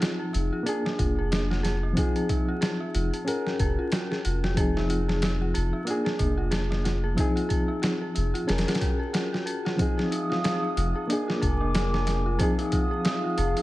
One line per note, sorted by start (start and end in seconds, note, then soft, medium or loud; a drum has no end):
0.00 0.59 F3 medium
0.00 0.60 C4 medium
0.00 0.33 D#4 medium
0.00 0.61 D#4 medium
0.00 0.53 F4 medium
0.00 0.19 G#4 medium
0.00 0.62 G#4 medium
0.00 snare loud
0.00 closed hi-hat medium
0.19 0.32 G#4 medium
0.33 0.50 F1 medium
0.33 0.44 D#4 medium
0.33 closed hi-hat medium
0.53 0.65 F4 medium
0.63 1.90 A#3 medium
0.63 1.91 D4 medium
0.63 0.84 G#4 medium
0.63 closed hi-hat medium
0.69 1.92 G#4 medium
0.86 0.93 D4 medium
0.86 snare medium
0.99 1.94 F1 medium
0.99 1.16 F4 medium
0.99 kick loud
0.99 closed hi-hat medium
1.19 1.30 G#4 medium
1.32 1.42 D4 medium
1.32 snare loud
1.32 closed hi-hat medium
1.50 1.63 F4 medium
1.50 snare soft
1.63 1.82 G#4 medium
1.63 snare medium
1.63 closed hi-hat medium
1.83 1.91 D4 medium
1.93 3.20 F3 medium
1.93 3.21 C4 medium
1.93 3.22 D#4 medium
1.93 closed hi-hat medium
1.97 2.14 F4 medium
1.97 3.22 G#4 medium
1.97 kick loud
2.16 2.28 G#4 medium
2.16 closed hi-hat soft
2.29 2.40 D#4 medium
2.29 kick medium
2.29 closed hi-hat medium
2.48 2.61 F4 medium
2.61 2.79 G#4 medium
2.61 snare loud
2.61 closed hi-hat medium
2.80 2.88 D#4 medium
2.94 3.11 F1 medium
2.94 3.11 F4 medium
2.94 closed hi-hat medium
3.14 3.26 G#4 medium
3.14 closed hi-hat soft
3.25 4.51 C#4 medium
3.25 3.38 F4 medium
3.25 4.52 G#4 medium
3.25 4.53 A#4 medium
3.25 closed hi-hat medium
3.47 3.59 F#4 medium
3.47 snare soft
3.59 3.76 F1 medium
3.59 3.78 G#4 loud
3.59 kick medium
3.59 closed hi-hat medium
3.79 3.86 F4 medium
3.92 4.09 F#4 medium
3.92 snare loud
3.92 closed hi-hat medium
4.11 4.23 G#4 medium
4.11 snare soft
4.25 5.53 F1 medium
4.25 4.36 F4 medium
4.25 closed hi-hat medium
4.44 4.57 F#4 medium
4.44 snare soft
4.54 5.81 F3 medium
4.54 5.82 C4 medium
4.54 5.83 D#4 medium
4.54 4.75 G#4 loud
4.54 kick loud
4.54 closed hi-hat medium
4.60 5.84 G#4 medium
4.77 4.84 D#4 medium
4.77 snare soft
4.90 5.07 F4 medium
4.90 closed hi-hat medium
5.08 5.21 G#4 medium
5.08 snare soft
5.22 5.33 D#4 medium
5.22 snare loud
5.22 closed hi-hat medium
5.41 5.54 F4 medium
5.54 5.72 F1 loud
5.54 5.73 G#4 medium
5.54 closed hi-hat medium
5.73 5.81 D#4 medium
5.85 7.11 A#3 medium
5.85 7.13 D4 medium
5.85 6.04 F4 medium
5.85 closed hi-hat medium
5.90 7.14 G#4 medium
6.05 6.18 G#4 medium
6.05 snare medium
6.19 7.15 F1 medium
6.19 6.30 D4 medium
6.19 kick medium
6.19 closed hi-hat medium
6.38 6.51 F4 medium
6.51 6.70 G#4 medium
6.51 snare loud
6.51 closed hi-hat medium
6.70 6.79 D4 medium
6.70 snare soft
6.84 7.02 F4 medium
6.84 snare soft
6.84 closed hi-hat medium
7.04 7.16 G#4 medium
7.15 8.41 F3 medium
7.15 8.42 C4 medium
7.15 7.28 D#4 medium
7.15 8.43 D#4 medium
7.15 kick loud
7.15 closed hi-hat medium
7.20 8.44 G#4 medium
7.36 7.49 F4 medium
7.36 closed hi-hat soft
7.49 7.68 G#4 medium
7.49 kick medium
7.49 closed hi-hat medium
7.68 7.77 D#4 medium
7.82 8.00 F4 medium
7.82 snare loud
7.82 closed hi-hat medium
8.02 8.14 G#4 medium
8.15 8.33 F1 medium
8.15 8.26 D#4 medium
8.15 closed hi-hat medium
8.34 8.47 F4 medium
8.34 closed hi-hat soft
8.47 8.65 F1 medium
8.47 9.73 C#4 medium
8.47 8.66 G#4 loud
8.47 9.74 G#4 medium
8.47 9.75 A#4 medium
8.47 snare medium
8.47 closed hi-hat medium
8.58 snare medium
8.58 closed hi-hat medium
8.67 8.75 F4 medium
8.67 snare medium
8.67 closed hi-hat medium
8.75 snare medium
8.75 closed hi-hat medium
8.81 8.98 F#4 medium
8.81 kick loud
8.81 closed hi-hat medium
8.99 9.12 G#4 medium
9.13 9.24 F4 medium
9.13 snare loud
9.13 closed hi-hat medium
9.33 9.46 F#4 medium
9.33 snare soft
9.46 9.64 G#4 medium
9.46 closed hi-hat medium
9.65 9.73 F4 medium
9.65 snare medium
9.77 11.03 F3 medium
9.77 11.04 C4 medium
9.77 11.05 D#4 medium
9.77 9.96 F4 medium
9.77 11.09 G#4 medium
9.77 11.09 F5 medium
9.77 kick loud
9.77 closed hi-hat medium
9.81 11.05 G#4 medium
9.81 11.09 D#6 medium
9.98 10.10 G#4 medium
9.98 snare soft
10.11 10.22 D#4 medium
10.11 closed hi-hat medium
10.30 10.43 F4 medium
10.30 snare soft
10.44 10.62 G#4 medium
10.44 snare loud
10.44 closed hi-hat medium
10.63 10.71 D#4 medium
10.77 10.93 F1 loud
10.77 10.94 F4 medium
10.77 closed hi-hat medium
10.95 11.08 G#4 medium
11.07 12.33 A#3 medium
11.07 12.35 D4 medium
11.07 11.20 D4 medium
11.07 12.39 A#4 medium
11.07 12.39 G#5 medium
11.07 12.38 D6 medium
11.07 closed hi-hat medium
11.13 12.36 G#4 medium
11.28 11.41 F4 medium
11.28 snare medium
11.42 12.38 F1 medium
11.42 11.60 G#4 medium
11.42 kick medium
11.42 closed hi-hat medium
11.61 11.69 D4 medium
11.75 11.92 F4 medium
11.75 snare loud
11.75 closed hi-hat medium
11.94 12.06 G#4 medium
11.94 snare soft
12.07 12.18 D4 medium
12.07 snare soft
12.07 closed hi-hat medium
12.26 12.39 F4 medium
12.37 13.62 F3 medium
12.37 13.62 C4 medium
12.37 13.62 D#4 medium
12.37 12.57 G#4 loud
12.37 13.62 G#4 medium
12.37 13.62 F5 medium
12.37 13.62 D#6 medium
12.37 kick loud
12.37 closed hi-hat medium
12.43 13.62 G#4 medium
12.59 12.67 D#4 medium
12.59 closed hi-hat soft
12.72 12.90 F4 medium
12.72 kick medium
12.72 closed hi-hat medium
12.91 13.04 G#4 medium
13.04 13.16 D#4 medium
13.04 snare loud
13.04 closed hi-hat medium
13.24 13.37 F4 medium
13.38 13.54 F1 medium
13.38 13.56 G#4 medium
13.38 closed hi-hat medium
13.57 13.62 D#4 medium
13.57 closed hi-hat soft